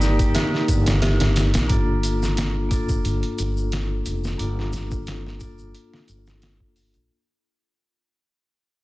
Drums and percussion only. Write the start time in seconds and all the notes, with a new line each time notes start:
0.01 snare, shaker
0.19 kick, closed hi-hat, shaker
0.35 snare, closed hi-hat, shaker
0.54 snare
0.68 kick, closed hi-hat, shaker
0.86 snare, closed hi-hat, shaker
1.02 snare, closed hi-hat, shaker
1.20 snare, closed hi-hat, low conga
1.36 snare, closed hi-hat, shaker
1.54 snare, closed hi-hat, shaker
1.69 kick, closed hi-hat, shaker
2.03 closed hi-hat, shaker
2.23 snare, shaker
2.37 snare, closed hi-hat, shaker
2.71 kick, closed hi-hat, shaker
2.89 kick, shaker
3.05 closed hi-hat, shaker
3.23 closed hi-hat
3.38 closed hi-hat, shaker
3.57 shaker
3.72 snare, closed hi-hat, shaker
4.06 closed hi-hat, shaker
4.24 snare, shaker
4.39 closed hi-hat, shaker
4.59 snare
4.73 snare, closed hi-hat, low conga, shaker
4.91 kick, shaker
5.07 snare, closed hi-hat, shaker
5.26 snare
5.40 kick, closed hi-hat, shaker
5.58 shaker
5.74 closed hi-hat, shaker
5.94 snare
6.08 closed hi-hat, shaker
6.27 snare, shaker
6.42 snare, closed hi-hat, shaker
6.60 kick
6.76 open hi-hat, shaker
6.94 closed hi-hat, shaker